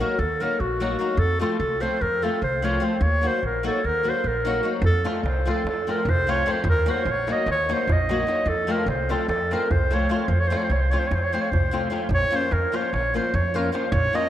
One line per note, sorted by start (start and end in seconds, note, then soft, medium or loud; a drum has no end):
0.00 0.14 F#3 medium
0.00 0.15 A#3 soft
0.00 0.15 D#4 medium
0.00 0.15 F#4 medium
0.00 0.21 A#4 medium
0.19 0.43 D#2 medium
0.19 0.43 A4 medium
0.40 0.56 F#3 medium
0.40 0.57 A#3 medium
0.40 0.56 D#4 soft
0.40 0.57 F#4 medium
0.40 0.62 A#4 medium
0.60 0.95 A#1 medium
0.60 1.21 F#4 medium
0.80 0.96 F#3 medium
0.80 0.96 A#3 medium
0.80 0.96 D#4 medium
0.80 0.96 F#4 medium
0.99 1.14 F#3 medium
0.99 1.14 A#3 medium
0.99 1.15 D#4 medium
0.99 1.15 F#4 medium
1.17 1.42 F2 loud
1.17 1.40 A4 loud
1.39 1.55 F3 medium
1.39 1.56 A3 medium
1.39 1.56 C4 medium
1.39 1.56 F4 medium
1.39 1.58 A4 medium
1.59 1.84 C2 medium
1.59 1.83 A4 medium
1.80 1.97 F3 soft
1.80 1.97 A3 medium
1.80 1.97 C4 medium
1.80 1.98 F4 medium
1.80 2.03 C5 medium
2.01 2.26 F2 medium
2.01 2.25 A#4 loud
2.22 2.38 F3 medium
2.22 2.39 A3 medium
2.22 2.39 C4 medium
2.22 2.39 F4 medium
2.22 2.43 A4 medium
2.42 2.77 C2 medium
2.42 2.66 C5 medium
2.62 2.78 F3 medium
2.62 2.78 A3 medium
2.62 2.79 C4 medium
2.62 2.79 F4 medium
2.62 2.86 C#5 medium
2.80 2.96 F3 medium
2.80 2.96 A3 medium
2.80 2.97 C4 medium
2.80 2.97 F4 medium
2.84 3.04 C5 medium
3.01 3.25 D#2 loud
3.01 3.29 C#5 loud
3.21 3.38 F#3 medium
3.21 3.38 A#3 medium
3.21 3.38 D#4 soft
3.21 3.39 F#4 medium
3.27 3.44 C5 medium
3.43 3.67 A#1 medium
3.43 3.65 A#4 medium
3.63 3.79 F#3 medium
3.63 3.80 A#3 medium
3.63 3.80 D#4 medium
3.63 3.80 F#4 medium
3.63 3.88 A4 medium
3.84 4.09 D#2 medium
3.84 4.11 A#4 loud
4.03 4.20 F#3 soft
4.03 4.21 A#3 soft
4.03 4.21 D#4 medium
4.03 4.21 F#4 soft
4.09 4.29 C5 medium
4.24 4.59 A#1 medium
4.24 4.69 A#4 medium
4.45 4.60 F#3 medium
4.45 4.61 A#3 medium
4.45 4.61 D#4 medium
4.45 4.61 F#4 medium
4.63 4.79 F#3 medium
4.63 4.79 A#3 soft
4.63 4.79 D#4 soft
4.63 4.79 F#4 medium
4.82 5.07 F2 loud
4.82 darbuka dum medium
4.86 5.05 A4 loud
5.04 5.20 F3 medium
5.04 5.20 A3 soft
5.04 5.20 C4 soft
5.04 5.21 F4 medium
5.04 darbuka tek medium
5.23 5.48 C2 medium
5.23 5.52 C5 medium
5.23 darbuka tek medium
5.46 5.61 F3 medium
5.46 5.62 A3 soft
5.46 5.62 C4 medium
5.46 5.62 F4 medium
5.46 darbuka tek medium
5.50 5.67 A4 medium
5.58 darbuka tek soft
5.64 5.89 F2 medium
5.64 darbuka tek medium
5.69 5.93 A4 medium
5.87 6.03 F3 medium
5.87 6.03 A3 soft
5.87 6.03 C4 medium
5.87 6.04 F4 soft
5.87 darbuka tek medium
5.91 6.11 A#4 medium
6.05 6.40 C2 medium
6.05 darbuka dum medium
6.10 6.32 C5 loud
6.27 6.42 F3 medium
6.27 6.43 A3 medium
6.27 6.43 C4 medium
6.27 6.43 F4 medium
6.27 6.53 C#5 loud
6.27 darbuka tek medium
6.46 6.61 F3 medium
6.46 6.61 A3 medium
6.46 6.62 C4 medium
6.46 6.62 F4 medium
6.46 darbuka tek medium
6.51 6.67 C5 medium
6.56 darbuka tek soft
6.64 6.89 D#2 loud
6.64 darbuka dum medium
6.69 6.92 A#4 loud
6.86 7.02 F#3 medium
6.86 7.02 A#3 medium
6.86 7.03 D#4 medium
6.86 7.03 F#4 medium
6.86 darbuka tek medium
6.91 7.13 C5 medium
6.96 darbuka tek soft
7.05 7.30 A#1 medium
7.05 darbuka tek medium
7.11 7.34 C#5 medium
7.27 7.43 F#3 medium
7.27 7.43 A#3 medium
7.27 7.44 D#4 soft
7.27 7.44 F#4 medium
7.27 darbuka tek medium
7.33 7.50 D#5 medium
7.38 darbuka tek soft
7.46 7.71 D#2 medium
7.46 darbuka tek medium
7.52 7.75 C#5 loud
7.69 7.85 F#3 soft
7.69 7.85 A#3 medium
7.69 7.85 D#4 soft
7.69 7.85 F#4 medium
7.69 darbuka tek medium
7.73 7.94 C5 medium
7.87 8.22 A#1 medium
7.87 darbuka dum loud
7.92 8.51 D#5 medium
8.09 8.24 F#3 medium
8.09 8.24 A#3 medium
8.09 8.25 D#4 medium
8.09 8.25 F#4 medium
8.09 darbuka tek medium
8.27 8.42 F#3 soft
8.27 8.43 A#3 soft
8.27 8.43 D#4 soft
8.27 8.43 F#4 medium
8.27 darbuka tek medium
8.38 darbuka tek soft
8.46 8.71 F2 medium
8.46 8.73 A4 medium
8.46 darbuka dum medium
8.67 8.83 F3 medium
8.67 8.84 A3 medium
8.67 8.84 C4 medium
8.67 8.84 F4 medium
8.67 darbuka tek medium
8.72 8.89 A#4 medium
8.79 darbuka tek soft
8.86 9.11 C2 medium
8.86 9.13 C5 medium
8.86 darbuka tek medium
9.09 9.25 F3 medium
9.09 9.25 A3 medium
9.09 9.25 C4 medium
9.09 9.26 F4 medium
9.09 9.29 A4 medium
9.09 darbuka tek medium
9.20 darbuka tek soft
9.28 9.53 F2 medium
9.28 9.55 A4 loud
9.28 darbuka tek medium
9.51 9.67 F3 medium
9.51 9.67 A3 medium
9.51 9.67 C4 medium
9.51 9.68 F4 medium
9.51 9.73 A#4 medium
9.51 darbuka tek medium
9.71 10.05 C2 medium
9.71 9.96 C5 medium
9.71 darbuka dum medium
9.91 10.06 F3 medium
9.91 10.06 A3 medium
9.91 10.06 C4 medium
9.91 10.07 F4 medium
9.91 10.11 C#5 loud
9.91 darbuka tek medium
10.09 10.24 F3 soft
10.09 10.25 A3 medium
10.09 10.25 C4 soft
10.09 10.25 F4 medium
10.09 10.30 C#5 medium
10.09 darbuka tek medium
10.20 darbuka tek soft
10.28 10.53 F2 medium
10.28 10.41 C5 medium
10.28 darbuka dum medium
10.40 10.50 C#5 loud
10.40 darbuka tek soft
10.48 10.66 F3 medium
10.48 10.66 A3 soft
10.48 10.66 C4 medium
10.48 10.67 F4 medium
10.48 10.59 C5 medium
10.52 darbuka tek medium
10.57 10.66 C#5 medium
10.64 10.74 C5 medium
10.70 10.94 C2 medium
10.70 10.82 C#5 medium
10.70 darbuka tek medium
10.81 10.92 C5 medium
10.81 darbuka tek soft
10.91 11.07 F3 medium
10.91 11.08 A3 soft
10.91 11.08 C4 soft
10.91 11.08 F4 medium
10.91 11.01 C#5 medium
10.91 darbuka tek medium
10.99 11.09 C5 medium
10.99 darbuka tek soft
11.07 11.36 F2 medium
11.07 11.16 C#5 medium
11.12 11.26 C5 medium
11.12 darbuka tek medium
11.24 11.35 C#5 medium
11.33 11.48 F3 medium
11.33 11.48 A3 soft
11.33 11.49 C4 medium
11.33 11.49 F4 medium
11.33 11.43 C5 medium
11.33 darbuka tek medium
11.41 11.52 C#5 medium
11.41 darbuka tek soft
11.51 11.87 C2 medium
11.51 11.93 C5 medium
11.51 darbuka dum medium
11.64 darbuka tek soft
11.71 11.87 F3 medium
11.71 11.88 A3 medium
11.71 11.88 C4 medium
11.71 11.88 F4 medium
11.71 darbuka tek medium
11.83 darbuka tek soft
11.90 12.06 F3 medium
11.90 12.06 A3 medium
11.90 12.06 C4 soft
11.90 12.07 F4 medium
11.90 darbuka tek medium
12.02 darbuka tek soft
12.09 12.23 A#1 loud
12.09 darbuka dum medium
12.14 12.37 C#5 loud
12.30 12.47 F3 medium
12.30 12.47 A#3 medium
12.30 12.48 C#4 medium
12.30 12.48 F4 medium
12.30 darbuka tek medium
12.36 12.55 C5 loud
12.51 12.65 F2 medium
12.51 12.78 A#4 medium
12.51 darbuka tek medium
12.72 12.88 F3 medium
12.72 12.89 A#3 soft
12.72 12.89 C#4 medium
12.72 12.89 F4 medium
12.72 darbuka tek medium
12.76 12.95 C5 medium
12.84 darbuka tek soft
12.93 13.18 A#1 medium
12.93 13.15 C#5 loud
12.93 darbuka tek medium
13.14 13.30 F3 soft
13.14 13.30 A#3 medium
13.14 13.30 C#4 soft
13.14 13.31 F4 medium
13.14 13.37 C5 medium
13.14 darbuka tek medium
13.34 13.68 F2 loud
13.34 13.58 C#5 medium
13.34 darbuka dum medium
13.46 darbuka tek soft
13.54 13.69 F3 medium
13.54 13.70 A#3 medium
13.54 13.70 C#4 medium
13.54 13.70 F4 medium
13.54 13.72 A#4 medium
13.54 darbuka tek medium
13.65 darbuka tek soft
13.72 13.88 F3 medium
13.72 13.88 A#3 medium
13.72 13.88 C#4 medium
13.72 13.88 F4 medium
13.72 13.93 C5 medium
13.72 darbuka tek medium
13.92 14.05 A#1 loud
13.92 14.17 C#5 loud
13.92 darbuka dum medium
14.13 14.29 F3 medium
14.13 14.29 A#3 medium
14.13 14.29 C#4 soft
14.13 14.29 F4 medium
14.13 14.29 D#5 loud
14.13 darbuka tek medium